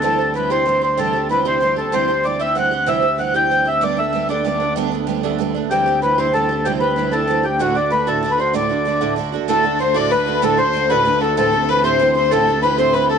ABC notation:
X:1
M:12/8
L:1/16
Q:3/8=127
K:Dmix
V:1 name="Accordion"
A4 B2 c4 c2 A4 B2 c4 A2 | c4 d2 e2 f4 e4 f2 g4 e2 | d2 e4 d6 z12 | G4 B2 c2 A4 G2 B4 A4 G2 |
F2 d2 B2 A3 B c2 d8 z4 | A4 c2 d2 B4 A2 c4 B4 A2 | A4 B2 c4 c2 A4 B2 c2 B2 A2 |]
V:2 name="Fiddle"
z24 | z24 | z24 | z24 |
z24 | A4 c2 d2 B4 A2 c4 B4 A2 | A4 B2 c4 c2 A4 B2 c2 B2 A2 |]
V:3 name="Twelve-string acoustic guitar"
[C,E,G,CG]2 [G,CG]2 [E,G,CG]2 [C,E,G,CG]2 [E,G,CG]2 [G,CG]2 [C,E,G,CG]2 [G,CG]2 [E,G,CG]2 [C,E,G,CG]2 [E,G,CG]2 [G,CG]2 | [C,E,G,CG]2 [G,CG]2 [E,G,CG]2 [C,E,G,CG]2 [E,G,CG]2 [G,CG]2 [C,E,G,CG]2 [G,CG]2 [E,G,CG]2 [C,E,G,CG]2 [E,G,CG]2 [G,CG]2 | [G,A,B,D]2 [A,B,D]2 [G,A,B,D]2 [G,A,B,D]2 [G,A,B,D]2 [A,B,D]2 [G,A,B,D]2 [A,B,D]2 [G,A,B,D]2 [G,A,B,D]2 [G,A,B,D]2 [A,B,D]2 | [C,E,G,CG]2 [G,CG]2 [E,G,CG]2 [C,E,G,CG]2 [E,G,CG]2 [G,CG]2 [C,E,G,CG]2 [G,CG]2 [E,G,CG]2 [C,E,G,CG]2 [E,G,CG]2 [CG]2 |
[D,,A,,D,A,DF]2 [D,A,DF]2 [D,A,DF]2 [D,,A,,D,A,DF]2 [D,A,DF]2 [D,A,DF]2 [D,,A,,D,A,DF]2 [D,A,DF]2 [D,A,DF]2 [D,,A,,D,A,DF]2 [D,A,DF]2 [D,A,DF]2 | [D,,A,,D,A,DF]2 [D,A,DF]2 [D,A,DF]2 [D,,A,,D,A,DF]2 [D,A,DF]2 [D,A,DF]2 [D,,A,,D,A,DF]2 [D,A,DF]2 [D,A,DF]2 [D,,A,,D,A,DF]2 [D,A,DF]2 [D,A,DF]2 | [A,,E,A,CG]2 [A,CG]2 [E,A,CG]2 [A,,E,A,CG]2 [E,A,CG]2 [A,CG]2 [A,,E,A,CG]2 [A,CG]2 [E,A,CG]2 [A,,E,A,CG]2 [E,A,CG]2 [A,CG]2 |]
V:4 name="Cello" clef=bass
D,,24 | D,,24- | D,,24- | D,,24- |
D,,24 | D,,24- | D,,24 |]